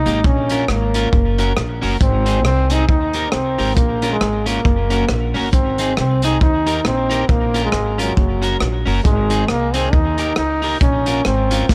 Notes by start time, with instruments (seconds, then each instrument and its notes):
Already playing: trombone D#4
0.06 upright bass G#1, clean electric guitar A#3 D#4 G4, closed hi-hat
0.24 upright bass A#1, trombone C#4, kick
0.49 clean electric guitar C#4 F4 A#4, closed hi-hat
0.68 upright bass G#1, trombone A#3, cross-stick
0.94 clean electric guitar C#4 F4 A#4, closed hi-hat
1.13 upright bass F#1, kick
1.38 clean electric guitar C#4 F#4 A#4, closed hi-hat
1.57 upright bass A#1, cross-stick
1.82 upright bass F#1, clean electric guitar C#4 F#4 A#4, open hi-hat
2.01 upright bass G#1, trombone C4, kick, hi-hat pedal
2.26 clean electric guitar C4 D#4 G#4, closed hi-hat
2.45 upright bass C2, trombone C4, cross-stick
2.70 clean electric guitar C4 D#4 G#4, trombone D#4, closed hi-hat
2.89 upright bass D#2, trombone D#4, kick
3.13 clean electric guitar D#4 G4 A#4, closed hi-hat
3.32 upright bass C2, trombone C4, cross-stick
3.58 upright bass G#1, clean electric guitar D#4 G4 A#4, open hi-hat
3.75 upright bass A#1, trombone A#3, kick, hi-hat pedal
4.02 clean electric guitar C#4 F4 A#4, closed hi-hat
4.12 trombone G#3
4.21 upright bass G#1, cross-stick
4.46 trombone A#3, clean electric guitar C#4 F4 A#4, closed hi-hat
4.65 upright bass F#1, kick
4.90 clean electric guitar C#4 F#4 A#4, closed hi-hat
5.09 upright bass A#1, cross-stick
5.34 upright bass F#1, clean electric guitar C#4 F#4 A#4, open hi-hat
5.52 upright bass G#1, trombone C4, kick, hi-hat pedal
5.78 clean electric guitar C4 D#4 G#4, closed hi-hat
5.97 upright bass C2, trombone C4, cross-stick
6.22 clean electric guitar C4 D#4 G#4, trombone D#4, closed hi-hat
6.41 upright bass D#2, trombone D#4, kick
6.66 clean electric guitar D#4 G4 A#4, closed hi-hat
6.85 upright bass A#1, trombone C4, muted clean electric guitar stroke, cross-stick
7.10 clean electric guitar D#4 G4 A#4, closed hi-hat
7.29 upright bass A#1, trombone A#3, kick
7.54 clean electric guitar C#4 F4 A#4, closed hi-hat
7.64 trombone G#3
7.72 upright bass G#1, cross-stick
7.98 trombone F#3, clean electric guitar C#4 F4 A#4, closed hi-hat
8.17 upright bass F#1, kick
8.42 clean electric guitar C#4 F#4 A#4, closed hi-hat
8.60 upright bass A#1, cross-stick
8.86 upright bass F#1, clean electric guitar C#4 F#4 A#4, open hi-hat
9.04 upright bass G#1, trombone G#3, kick, hi-hat pedal
9.30 clean electric guitar C4 D#4 G#4, closed hi-hat
9.48 upright bass C2, trombone A#3, cross-stick
9.74 clean electric guitar C4 D#4 G#4, trombone C4, closed hi-hat
9.93 upright bass D#2, trombone D#4, kick
10.18 clean electric guitar D#4 G4 A#4, closed hi-hat
10.36 upright bass C#2, trombone D#4, cross-stick
10.62 clean electric guitar D#4 G4 A#4, open hi-hat
10.81 upright bass A#1, trombone C#4, kick, hi-hat pedal
11.06 clean electric guitar C#4 F4 A#4, closed hi-hat
11.25 upright bass G#1, trombone C4, cross-stick
11.51 clean electric guitar C#4 F4 A#4, closed hi-hat
11.69 upright bass F#1, trombone A#3, kick, snare